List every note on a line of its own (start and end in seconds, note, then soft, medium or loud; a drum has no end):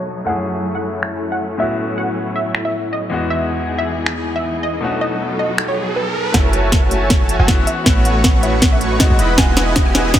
0.00 0.24 B2 medium
0.00 1.57 F#3 medium
0.00 0.24 A3 medium
0.00 3.08 A3 medium
0.00 0.24 B3 medium
0.00 0.25 C#4 medium
0.00 0.25 D#4 medium
0.00 0.62 D#4 medium
0.00 0.26 F#4 medium
0.00 0.46 F#4 medium
0.00 0.21 C#5 medium
0.00 0.18 D#5 medium
0.00 0.24 D#5 medium
0.08 2.28 A4 medium
0.18 0.62 D#5 medium
0.25 1.56 F#2 medium
0.25 1.57 A3 medium
0.25 1.57 C#4 medium
0.25 0.64 C#4 medium
0.25 3.09 C#4 medium
0.25 1.58 E4 medium
0.25 0.43 F#5 loud
0.29 1.58 G#4 medium
0.37 1.88 C#5 loud
0.46 0.84 F#4 medium
0.56 0.75 E4 medium
0.65 1.02 C#4 medium
0.75 0.94 E4 medium
0.75 0.98 F#5 medium
0.84 1.22 F#4 medium
0.94 1.13 E4 medium
1.03 1.40 C#4 medium
1.03 finger snap medium
1.13 1.32 E4 medium
1.22 1.59 F#4 medium
1.32 1.51 E4 medium
1.32 1.55 F#5 medium
1.41 1.78 C#4 medium
1.51 1.69 E4 medium
1.58 3.08 A2 medium
1.58 3.10 F#3 medium
1.58 3.09 B3 medium
1.58 3.09 C#4 medium
1.58 3.10 E4 medium
1.58 1.97 F#4 medium
1.58 3.10 F#4 medium
1.58 1.91 E5 medium
1.70 2.08 E4 medium
1.79 2.16 C#4 medium
1.89 3.80 C#5 medium
1.98 2.35 F#4 medium
1.98 2.29 F#5 medium
2.08 2.26 E4 medium
2.17 2.54 C#4 medium
2.27 2.46 E4 medium
2.36 2.73 F#4 medium
2.36 2.59 E5 medium
2.46 2.64 E4 loud
2.55 2.92 C#4 medium
2.55 finger snap medium
2.65 2.84 E4 medium
2.65 2.88 E5 medium
2.74 5.11 F#4 medium
2.84 3.03 E4 medium
2.93 5.83 C#4 medium
2.93 3.24 D#5 medium
3.03 3.22 E4 medium
3.10 4.79 E2 medium
3.10 4.81 E3 medium
3.10 4.80 G#3 medium
3.10 4.80 B3 medium
3.10 6.31 B3 medium
3.10 4.81 F#4 medium
3.10 3.49 G#4 medium
3.10 4.81 G#4 medium
3.10 6.31 D#5 medium
3.10 4.81 D#5 medium
3.22 3.37 E4 loud
3.30 3.66 D#4 loud
3.30 3.46 E5 loud
3.30 riser medium
3.41 3.66 D#5 loud
3.50 3.87 G#4 medium
3.60 3.75 E4 medium
3.69 3.85 D#4 medium
3.78 3.97 E4 medium
3.78 4.02 E5 medium
3.88 4.25 G#4 medium
3.98 4.12 E4 loud
4.06 4.23 D#4 medium
4.06 finger snap medium
4.17 4.35 E4 medium
4.26 4.63 G#4 medium
4.36 4.50 E4 medium
4.36 4.59 E5 medium
4.44 4.61 D#4 medium
4.55 4.73 E4 medium
4.63 5.07 G#4 medium
4.63 4.95 D#5 medium
4.74 4.88 E4 loud
4.80 6.31 B2 medium
4.80 6.33 F#3 medium
4.80 6.31 A3 medium
4.80 6.32 C#4 medium
4.80 5.20 D#4 medium
4.80 6.33 D#4 medium
4.80 6.33 A4 medium
4.85 6.33 F#4 medium
4.92 6.71 D#5 medium
5.01 5.39 A4 medium
5.01 5.33 D#5 medium
5.11 5.30 F#4 medium
5.20 5.58 D#4 medium
5.30 5.49 F#4 medium
5.39 5.96 A4 medium
5.39 5.63 D#5 medium
5.49 5.68 F#4 loud
5.58 8.29 D#4 medium
5.58 finger snap medium
5.68 5.87 F#4 medium
5.68 5.92 C#5 medium
5.77 7.82 B4 medium
5.88 8.31 F#4 medium
5.96 6.06 A4 medium
5.96 6.28 B4 medium
6.07 6.15 A4 medium
6.15 8.35 A4 medium
6.25 7.70 A5 medium
6.32 7.37 F#1 medium
6.32 9.16 E3 medium
6.32 6.88 A3 medium
6.32 9.16 A3 medium
6.32 6.89 C#4 medium
6.32 9.16 C#4 medium
6.32 6.89 E4 medium
6.32 9.16 F#4 medium
6.32 7.37 F#4 medium
6.32 7.37 C#5 medium
6.32 7.37 E5 medium
6.32 6.50 F#5 loud
6.32 7.37 G#5 medium
6.32 7.37 A5 medium
6.32 kick medium
6.32 snare soft
6.32 closed hi-hat medium
6.32 riser medium
6.53 closed hi-hat medium
6.72 kick medium
6.72 snare soft
6.72 closed hi-hat medium
6.82 7.06 F#5 medium
6.89 7.45 A3 medium
6.89 7.46 C#4 medium
6.89 7.46 E4 medium
6.89 closed hi-hat medium
7.10 kick medium
7.10 snare medium
7.10 closed hi-hat medium
7.29 closed hi-hat medium
7.39 7.64 F#1 medium
7.39 7.66 F#4 medium
7.39 7.66 C#5 medium
7.39 7.66 E5 medium
7.39 7.63 F#5 medium
7.39 7.66 G#5 medium
7.39 7.66 A5 medium
7.47 7.83 B3 medium
7.47 7.84 C#4 medium
7.47 7.84 E4 medium
7.47 7.84 F#4 loud
7.47 kick loud
7.47 snare medium
7.47 closed hi-hat medium
7.67 7.99 E5 loud
7.67 closed hi-hat medium
7.84 9.08 A1 loud
7.84 9.08 A3 medium
7.84 8.39 B3 medium
7.84 8.41 C#4 medium
7.84 8.41 E4 medium
7.84 9.08 F#4 medium
7.84 9.08 B4 medium
7.84 9.08 C#5 medium
7.84 9.08 C#6 medium
7.84 kick medium
7.84 snare medium
7.84 closed hi-hat medium
7.88 8.42 F#4 medium
8.05 8.37 F#5 medium
8.05 closed hi-hat medium
8.24 kick loud
8.24 snare medium
8.24 closed hi-hat medium
8.41 8.97 B3 medium
8.41 8.98 C#4 medium
8.41 8.98 E4 medium
8.41 8.67 E5 medium
8.41 closed hi-hat medium
8.45 8.99 F#4 medium
8.62 kick medium
8.62 snare medium
8.62 closed hi-hat medium
8.72 8.96 E5 medium
8.81 closed hi-hat medium
8.99 9.34 G#3 medium
8.99 9.36 B3 medium
8.99 9.36 D#4 medium
8.99 9.36 F#4 loud
8.99 9.32 D#5 medium
8.99 kick loud
8.99 snare medium
8.99 closed hi-hat medium
9.10 9.20 A1 medium
9.10 9.17 A3 loud
9.10 9.17 F#4 medium
9.10 9.17 B4 medium
9.10 9.17 C#5 medium
9.10 9.17 C#6 loud
9.19 9.36 E1 loud
9.19 10.20 G#3 medium
9.19 10.20 B3 medium
9.19 9.36 E4 loud
9.19 9.36 B4 medium
9.19 9.36 D#5 medium
9.19 9.36 F#5 medium
9.19 9.36 B5 loud
9.19 closed hi-hat medium
9.36 10.20 E1 loud
9.36 9.91 G#3 medium
9.36 9.92 B3 medium
9.36 10.20 E4 medium
9.36 9.94 F#4 medium
9.36 10.20 B4 medium
9.36 10.20 D#5 medium
9.36 9.93 D#5 medium
9.36 10.20 G#5 loud
9.36 9.54 G#5 loud
9.36 kick medium
9.36 snare medium
9.36 closed hi-hat medium
9.57 snare medium
9.57 closed hi-hat medium
9.76 kick loud
9.76 snare medium
9.76 closed hi-hat medium
9.86 10.09 G#5 medium
9.93 10.20 G#3 medium
9.93 10.20 B3 medium
9.93 10.20 F#4 medium
9.93 10.20 D#5 medium
9.93 snare medium
9.93 closed hi-hat medium
10.14 kick loud
10.14 snare medium
10.14 closed hi-hat medium